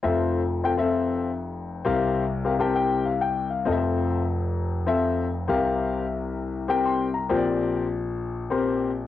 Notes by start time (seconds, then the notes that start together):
0.03 F1 F2 C4 F4 A4 E5
0.64 C4 F4 A4 G5
0.77 C4 F4 A4 E5
1.85 C2 C3 C4 G4 A#4 F5
2.44 C4 G4 A#4 F5
2.59 C4 G4 A#4 G5 A5
2.76 G5
3.05 F5
3.21 G5
3.50 F5
3.65 F1 F2 C4 F4 A4 D#5
3.72 E5
4.87 C4 F4 A4 E5
5.48 C2 C3 C4 G4 A#4 F5
6.68 C4 G4 A#4 G5
6.86 C6
7.14 A#5
7.29 A#1 A#2 C4 G4 A#4 C5
7.37 D5
8.50 C4 G4 A#4 C5